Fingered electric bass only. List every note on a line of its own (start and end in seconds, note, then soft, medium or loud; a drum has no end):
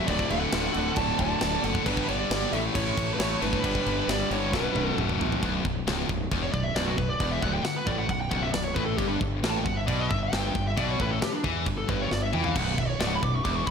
0.08 0.23 D1 loud
0.30 0.45 D1 medium
0.52 0.67 D1 medium
0.76 0.90 D1 loud
0.97 1.11 D1 medium
1.19 1.34 D1 medium
1.42 1.57 D1 medium
1.64 1.78 F#1 medium
1.86 2.01 G1 loud
2.09 2.23 G1 medium
2.30 2.45 G1 loud
2.53 2.67 A1 loud
2.75 2.90 A1 loud
2.97 3.12 A1 loud
3.19 3.34 A1 medium
3.42 3.56 G1 medium
3.64 3.78 G1 loud
3.86 4.01 G1 medium
4.08 4.22 G1 loud
4.31 4.54 G1 loud
4.54 4.68 B0 loud
4.75 4.89 B0 medium
4.97 5.12 B0 medium
5.20 5.35 A1 medium
5.43 5.63 B0 loud
5.65 5.85 B0 medium
5.87 6.07 C#1 loud
6.09 6.30 B0 medium
6.32 6.52 E1 medium
6.54 6.74 B0 medium
6.75 6.96 B0 medium
6.98 7.19 B0 medium
7.20 7.41 E1 medium
7.42 7.63 D1 medium
7.64 muted fingered electric bass stroke soft
7.87 8.08 A1 loud
8.09 8.30 B0 medium
8.31 8.52 B0 loud
8.54 8.75 B0 medium
8.76 8.97 A1 medium
8.99 9.19 G1 loud
9.21 9.42 G1 medium
9.43 9.64 A1 loud
9.66 9.86 G1 medium
9.88 10.09 B1 medium
10.11 10.31 G1 medium
10.32 10.53 G1 medium
10.55 10.76 G1 medium
10.78 10.98 B1 medium
11.00 11.21 A1 loud
11.22 muted fingered electric bass stroke soft
11.44 11.65 E2 loud
11.66 11.87 G1 medium
11.89 12.10 G1 loud
12.11 12.32 G1 medium
12.33 12.54 E2 medium
12.56 12.76 B0 loud
12.78 12.99 B0 medium
13.00 13.21 C#1 loud
13.23 13.44 B0 medium
13.45 13.66 E1 medium
13.67 13.71 B0 medium